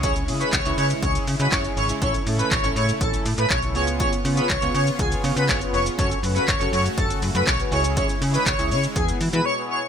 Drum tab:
HH |xxoxxxoxxxoxxxox|xxoxxxoxxxoxxxox|xxoxxxoxxxoxxxox|xxoxxxoxxxoxxxox|
SH |xxxxxxxxxxxxxxxx|xxxxxxxxxxxxxxxx|xxxxxxxxxxxxxxxx|xxxxxxxxxxxxxxxx|
CP |----x-------x---|----x-------x---|----x-------x---|----x-------x---|
BD |o---o---o---o---|o---o---o---o---|o---o---o---o---|o---o---o---o---|

HH |xxoxxxoxxxox----|
SH |xxxxxxxxxxxx----|
CP |----x-----------|
BD |o---o---o-------|